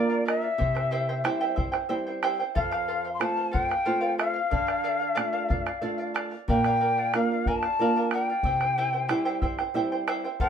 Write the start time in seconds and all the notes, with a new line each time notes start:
Already playing: A#3 D4 F4 D5
0.10 A#4 D5 F5
0.25 A#4 D5 E5 F5, bombo rim
0.42 D5 F5, bombo rim
0.58 C3 E4 C5 E5 G5, bombo low
0.75 E4 C5 G5, bombo rim
0.91 E4 G4 C5 E5 G5, bombo rim
1.09 E4 C5 G5, bombo rim
1.24 G3 C4 E4 G4 C5 E5 G5, bombo rim
1.41 E4 G4 C5 E5 G5
1.56 E4 C5 E5 G5, bombo low
1.72 E4 C5 G5, bombo rim
1.89 G3 C4 E4 C5 E5 G5, bombo rim
2.07 E4 C5 G5
2.23 E4 G4 C5 E5 G5, bombo rim
2.40 E4 C5 G5, bombo rim
2.55 F2 A4 C5 F5, bombo low
2.71 A4 C5 F5, bombo rim
2.88 A4 C5 F5, bombo rim
3.05 C5 F5, bombo rim
3.14 C6
3.20 A3 C4 F4 A4 C5 F5 A5, bombo rim
3.37 C5 F5
3.51 A4 C5 F5 G5, bombo low
3.69 C5 F5, bombo rim
3.85 A3 C4 F4 A4 C5 F5, bombo rim
4.01 A4 C5 F5
4.18 A4 C5 F5, bombo rim
4.34 C5 F5, bombo rim
4.50 D3 A4 D5 F5, bombo low
4.67 D5 F5, bombo rim
4.84 A4 D5 F5
5.00 D5 F5
5.15 A3 D4 F4 A4 D5 F5, bombo rim
5.33 A4 D5 F5, bombo rim
5.48 A4 D5 F5, bombo low
5.66 D5 F5, bombo rim
5.82 A3 D4 F4 A4 D5 F5
5.98 D5 F5
6.14 A4 D5 F5, bombo rim
6.31 D5 F5, bombo rim
6.48 A#2 A#4 D5 F5 G5, bombo low
6.64 A#4 D5 F5, bombo rim
6.80 A#4 D5 F5, bombo rim
6.98 D5 F5, bombo rim
7.13 A#3 D4 F4 A#4 D5 F5, bombo rim
7.31 D5 F5
7.46 A#4 D5 F5 A5, bombo low
7.63 D5 F5, bombo rim
7.79 A#3 D4 F4 A#4 D5 F5, bombo rim
7.96 A#4 D5 F5
8.11 A#4 D5 F5 G5, bombo rim
8.28 D5 F5, bombo rim
8.43 C3 E4 C5 E5 G5, bombo low
8.60 E4 C5 G5, bombo rim
8.76 E4 G4 C5 E5 G5, bombo rim
8.93 E4 C5 G5, bombo rim
9.08 G3 C4 E4 G4 C5 E5 G5, bombo rim
9.25 E4 G4 C5 E5 G5
9.42 E4 C5 E5 G5, bombo low
9.59 E4 C5 G5, bombo rim
9.74 G3 C4 E4 C5 E5 G5, bombo rim
9.92 E4 C5 G5
10.07 E4 G4 C5 E5 G5, bombo rim
10.24 E4 C5 G5, bombo rim
10.40 F2 A4 C5 F5 G5, bombo low